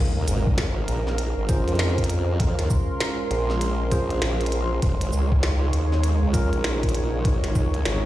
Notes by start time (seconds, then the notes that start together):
Already playing: A#1 G#3 C#4 D#4 A#4 F5, impact
0.17 D#2
0.28 G#1, closed hi-hat, shaker
0.47 kick
0.58 snare, closed hi-hat
0.88 A#1, closed hi-hat
1.07 snare
1.18 closed hi-hat
1.38 G#1
1.49 C#4 F4 G#4 C5 C6, kick, closed hi-hat, shaker
1.68 F2, closed hi-hat
1.75 snare, closed hi-hat
1.79 closed hi-hat
1.85 closed hi-hat
1.89 closed hi-hat
1.98 kick, closed hi-hat
2.04 closed hi-hat
2.10 closed hi-hat
2.40 kick, closed hi-hat
2.59 D#2, snare, closed hi-hat
2.70 kick, shaker
3.01 snare, closed hi-hat
3.31 A#1, closed hi-hat
3.50 snare
3.61 closed hi-hat
3.92 C#4 F4 G#4 C5, kick, closed hi-hat, shaker
4.10 closed hi-hat
4.22 A#1, snare, closed hi-hat
4.41 closed hi-hat
4.46 closed hi-hat
4.52 closed hi-hat
4.82 D#1 D#4 C#5, kick, closed hi-hat
5.01 G#1, closed hi-hat
5.09 C#2 A#4, shaker
5.32 kick
5.43 snare, closed hi-hat
5.73 D#2, closed hi-hat
5.92 snare
6.04 closed hi-hat
6.23 C#2
6.34 C#4 F4 G#4 A#4, kick, closed hi-hat, shaker
6.53 A#1, closed hi-hat
6.64 snare, closed hi-hat
6.83 kick, closed hi-hat
6.89 closed hi-hat
6.95 closed hi-hat
7.25 kick, closed hi-hat
7.44 G#1, snare, closed hi-hat
7.55 C#2, kick, shaker
7.74 closed hi-hat
7.85 G#1, snare, closed hi-hat